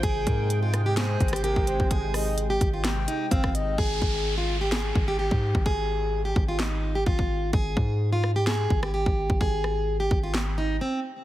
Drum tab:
HH |x-----x-----x-----x-----x-----x-x-x-x-----x-----|x-----o-----x-----x-----x-----x-----x-----x-----|------------------------------------------------|------------------------------------------------|
CP |------------------------x-----------------------|------------------------x-----------------------|------------------------x-----------------------|------------------------x-----------------------|
SD |------------------r-----o--------r--------------|------r-----------------o--------------r--------|------------------------o-----------------------|------------------------o-----------------------|
BD |o-----o-----------------------o--------o-----o--|o-----------------o-----------------o--o--------|o-----o-----------------------o--------o-----o--|o-----------------o-----------------o--o--------|

HH |------------------------------------------------|------------------------------------------------|
CP |------------------------x-----------------------|------------------------x-----------------------|
SD |------------------r-----o--------r--------------|------r-----------------o-----------------------|
BD |o-----o-----------------------o--------o-----o--|o-----------------o-----------------------------|